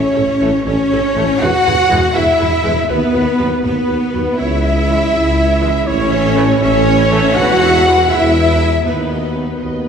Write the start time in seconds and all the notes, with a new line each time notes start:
Already playing: C#4 C#5
0.15 A1 A4 C#5
0.40 A1 E3 A3 A4 C#5
0.65 A1 C#4 A4 C#5
0.90 A1 A4 C#5
1.15 A1 E3 A3 A4 C#5
1.39 E1 E2 F#4 G#4 B4 F#5
1.65 E1 E2 G#4 B4
1.89 E1 E2 E3 G#3 G#4 B4
2.14 E1 E2 E4 G#4 B4 E5
2.39 E1 E2 G#4 B4
2.63 E2 E3 G#3 G#4 B4
2.67 E1
2.88 D#2 B3 F#4 B4
2.93 B3
3.13 D#2 F#4 B4
3.38 D#2 F#3 B3 F#4 B4
3.62 D#2 B3 F#4 B4
3.87 D#2 F#4 B4
4.12 D#2 F#3 B3 F#4 B4
4.35 C#2 E4 C#5 E5
4.40 E5
4.64 G#4 E5
4.87 E3 G#3 E4 C#5
5.12 C#2 G#4 E5
5.37 E4 C#5
5.61 E3 G#3 G#4 E5
5.84 A1 C#4 E4 C#5
5.90 C#5
6.12 A4 E5
6.35 E3 A3 E4 C#5
6.61 A1 C#4 A4 C#5 E5
6.87 E4 C#5
7.10 E3 A3 A4 E5
7.35 E1 E2 E4 F#4 B4 F#5
7.62 G#4 E5
7.86 E3 G#3 E4 B4
8.10 E1 E2 E4 G#4 E5
8.36 E4 B4
8.60 E3 G#3 G#4 E5
8.85 D#2 B3 D#4 B4
9.11 F#4 D#5
9.36 F#3 B3 D#4 B4
9.57 D#2 B4 D#5
9.61 B3 F#4
9.85 D#4 B4